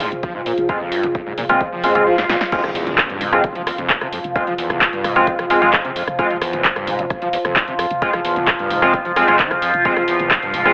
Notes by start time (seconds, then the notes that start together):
Already playing: F3 F4 G#4 C5 F5
0.00 G2, open hi-hat
0.12 F1, closed hi-hat
0.23 F3, kick, closed hi-hat
0.35 F1 G#2
0.46 A#2, open hi-hat
0.58 F1, closed hi-hat
0.69 F2 G#3 C4 F4, kick, closed hi-hat
0.81 F1
0.92 G2, open hi-hat
1.03 F1 F2, closed hi-hat
1.15 F2, kick, closed hi-hat
1.26 F1 G#2
1.38 F1 A#2, open hi-hat
1.49 F1 A#2 G#3 C4 F4, closed hi-hat
1.61 E2, kick, closed hi-hat, swell
1.72 F1 F3
1.84 G2 G#3 C4 F4, open hi-hat
1.95 F1 G#3 C4 F4, closed hi-hat
2.07 F3
2.18 G#2, snare
2.29 A#2, snare
2.41 snare
2.52 F2 F3 G#3 C4 F4, kick, closed hi-hat, crash, impact
2.64 F1 F3, cross-stick, closed hi-hat
2.75 E2, open hi-hat
2.87 F1, closed hi-hat
2.98 G#2, kick, cross-stick, clap, closed hi-hat
3.10 F1 G2, closed hi-hat
3.21 F1 G#2, open hi-hat
3.33 F1 F2 G#3 C4 F4, cross-stick, closed hi-hat
3.44 kick, closed hi-hat
3.55 F1 F3, closed hi-hat
3.67 E2, cross-stick, open hi-hat
3.78 F1 F2, closed hi-hat
3.90 G#2, kick, clap, closed hi-hat
4.01 F1 C3, cross-stick, closed hi-hat
4.13 F2, open hi-hat
4.24 F1, closed hi-hat
4.36 F2 G#3 C4 F4, kick, cross-stick, closed hi-hat
4.47 F1 F3, closed hi-hat
4.58 E2, open hi-hat
4.70 F1, cross-stick, closed hi-hat
4.81 G#2, kick, clap, closed hi-hat
4.93 F1 G2, closed hi-hat
5.04 F1 G#2, cross-stick, open hi-hat
5.16 F1 F2 G#3 C4 F4, closed hi-hat
5.27 kick, closed hi-hat
5.39 F1 F3, cross-stick, closed hi-hat
5.50 E2 G#3 C4 F4, open hi-hat
5.62 F1 F2 G#3 C4 F4, closed hi-hat
5.73 G#2, kick, cross-stick, clap, closed hi-hat
5.85 F1 C3, closed hi-hat
5.96 F2, open hi-hat
6.08 F1, cross-stick, closed hi-hat
6.19 F2 G#3 C4 F4, kick, closed hi-hat
6.30 F1 F3, closed hi-hat
6.42 E2, cross-stick, open hi-hat
6.53 F1, closed hi-hat
6.65 G#2, kick, clap, closed hi-hat
6.76 F1 G2, cross-stick, closed hi-hat
6.87 F1 G#2, open hi-hat
6.99 F1 F2, closed hi-hat
7.10 kick, cross-stick, closed hi-hat
7.22 F1 F3, closed hi-hat
7.33 E2, open hi-hat
7.45 F1 F2, cross-stick, closed hi-hat
7.56 G#2, kick, clap, closed hi-hat
7.68 F1 C3, closed hi-hat
7.79 F2, cross-stick, open hi-hat
7.91 F1, closed hi-hat
8.02 F2 G#3 C4 F4, kick, closed hi-hat
8.13 F1 F3, cross-stick, closed hi-hat
8.25 E2, open hi-hat
8.36 F1, closed hi-hat
8.48 G#2, kick, cross-stick, clap, closed hi-hat
8.59 F1 G2, closed hi-hat
8.71 F1 G#2, open hi-hat
8.82 F1 F2 G#3 C4 F4, cross-stick, closed hi-hat
8.94 kick, closed hi-hat
9.05 F1 F3, closed hi-hat
9.16 F2 G#3 C4 F4, cross-stick, open hi-hat
9.28 F1 G#3 C4 F4, closed hi-hat
9.39 F3, kick, clap, closed hi-hat
9.51 F1, cross-stick, closed hi-hat
9.62 F2, open hi-hat
9.74 F1, closed hi-hat
9.85 F2 G#3 C4 F4, kick, closed hi-hat
9.97 F1 F3, cross-stick, closed hi-hat
10.08 E2, open hi-hat
10.19 F1, closed hi-hat
10.31 G#2, kick, cross-stick, clap, closed hi-hat
10.43 F1 G2, closed hi-hat
10.54 F1 G#2, open hi-hat
10.65 F1 F2 G#3 C4 F4, cross-stick, closed hi-hat